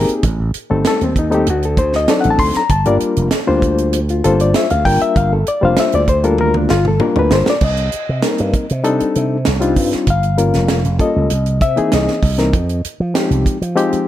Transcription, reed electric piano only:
0.00 0.24 A#3 medium
0.00 0.24 C4 medium
0.00 0.24 D#4 medium
0.00 0.24 G4 medium
0.00 0.25 G#4 medium
0.00 0.13 A#4 loud
0.70 1.11 G3 medium
0.70 1.12 A3 medium
0.70 1.03 C4 medium
0.70 1.12 D#4 medium
0.70 0.86 A4 medium
0.87 1.02 A4 medium
1.04 1.17 C4 medium
1.19 1.30 D#4 medium
1.30 1.46 G3 medium
1.30 1.46 A3 medium
1.30 1.47 C4 medium
1.30 1.47 D#4 medium
1.30 1.47 A4 medium
1.34 1.48 G4 medium
1.50 1.64 F#4 medium
1.65 1.79 A4 medium
1.79 1.94 C5 loud
1.96 2.10 D#5 loud
2.08 2.60 F#3 medium
2.08 2.60 C4 medium
2.08 2.61 D4 medium
2.08 2.61 D#4 medium
2.08 2.61 A4 medium
2.08 2.20 D5 medium
2.21 2.30 F#5 medium
2.31 2.40 A5 loud
2.39 2.55 C6 loud
2.57 2.71 A#5 loud
2.71 2.86 A5 medium
2.86 3.27 G3 medium
2.86 3.27 A#3 medium
2.86 3.27 D4 medium
2.86 3.27 F4 medium
2.86 3.27 A#4 medium
2.86 2.96 D5 medium
3.47 3.99 G3 medium
3.47 3.99 A#3 medium
3.47 3.99 D4 medium
3.47 3.99 F4 medium
3.47 3.99 C5 medium
4.10 4.24 F4 medium
4.24 4.66 G3 medium
4.24 4.66 A#3 medium
4.24 4.66 D4 medium
4.24 4.66 F4 medium
4.24 4.39 A4 medium
4.24 4.66 C5 medium
4.41 4.55 D5 medium
4.56 4.70 E5 medium
4.71 4.85 F5 medium
4.85 5.37 G3 medium
4.85 5.37 A#3 medium
4.85 5.37 D4 medium
4.85 5.38 F4 medium
4.85 5.38 A#4 medium
4.85 5.01 G5 loud
5.02 5.16 E5 loud
5.17 5.32 F5 loud
5.33 5.47 A4 medium
5.48 5.63 D5 medium
5.61 6.03 G3 medium
5.61 6.03 A#3 medium
5.61 6.03 D4 medium
5.61 6.04 F4 medium
5.61 6.04 C5 medium
5.61 5.78 F5 loud
5.80 5.94 E5 loud
5.95 6.09 D5 medium
6.09 6.24 C5 medium
6.24 6.75 G3 medium
6.24 6.75 A#3 medium
6.24 6.56 D4 medium
6.24 6.69 F4 medium
6.24 6.39 A4 medium
6.24 6.40 A#4 medium
6.41 6.55 A#4 medium
6.57 6.71 D4 medium
6.70 6.85 F4 medium
6.88 7.01 A4 medium
7.00 7.52 G3 medium
7.00 7.52 A#3 medium
7.00 7.52 D4 medium
7.00 7.52 F4 medium
7.00 7.52 A#4 medium
7.19 7.32 B4 medium
7.33 7.48 C5 medium
7.50 7.63 D5 medium
7.64 8.82 D#5 medium
8.22 8.64 G3 medium
8.22 8.65 A#3 medium
8.22 8.65 C4 medium
8.22 8.65 D#4 medium
8.22 8.65 A#4 medium
8.84 9.36 G3 medium
8.84 9.37 C4 medium
8.84 9.36 D4 medium
8.84 9.37 D#4 medium
8.84 9.37 A4 loud
9.60 10.07 G3 medium
9.60 10.07 C4 medium
9.60 10.07 D4 medium
9.60 10.08 D#4 medium
9.60 10.08 F4 medium
10.10 10.97 F5 medium
10.37 10.80 G3 medium
10.37 10.80 A#3 medium
10.37 10.80 C#4 medium
10.37 10.80 F4 medium
10.37 10.80 A#4 medium
10.98 11.30 G3 medium
10.98 11.30 A#3 medium
10.98 11.31 C#4 medium
10.98 11.31 F4 medium
10.98 11.31 A4 medium
10.98 11.58 D#5 medium
11.62 11.92 E5 loud
11.76 12.18 E3 medium
11.76 12.18 A#3 medium
11.76 12.18 C4 medium
11.76 12.18 D#4 medium
11.76 12.19 G#4 medium
11.94 12.82 D#5 medium
12.38 12.54 E3 medium
12.38 12.53 A#3 medium
12.38 12.54 C4 medium
12.38 12.54 D#4 medium
12.38 12.54 A#4 medium
13.14 13.56 F3 medium
13.14 13.56 G#3 medium
13.14 13.57 C4 medium
13.14 13.57 D#4 medium
13.14 13.57 G4 medium
13.75 14.08 F3 loud
13.75 14.08 G#3 medium
13.75 14.08 C4 medium
13.75 14.08 D#4 medium
13.75 14.08 G4 loud

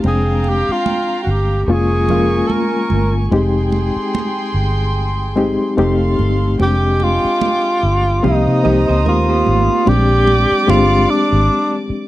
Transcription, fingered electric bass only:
0.04 0.62 F1 medium
0.69 muted fingered electric bass stroke soft
1.27 1.63 G1 medium
1.68 2.41 F1 loud
2.91 3.28 G1 medium
3.31 3.89 F1 medium
3.96 muted fingered electric bass stroke soft
4.54 5.56 G1 medium
5.78 6.14 F1 medium
6.19 6.55 G1 medium
6.60 7.18 F1 medium
7.25 muted fingered electric bass stroke soft
7.83 8.19 G1 medium
8.25 8.45 C2 medium
8.47 8.62 C3 medium
8.65 8.86 C2 medium
8.89 9.06 C#2 medium
9.06 9.42 D#2 medium
9.47 9.68 G#1 medium
9.87 10.45 A#1 loud
10.52 muted fingered electric bass stroke soft
10.68 11.05 G1 medium
11.33 11.48 G#1 medium
11.90 muted fingered electric bass stroke soft

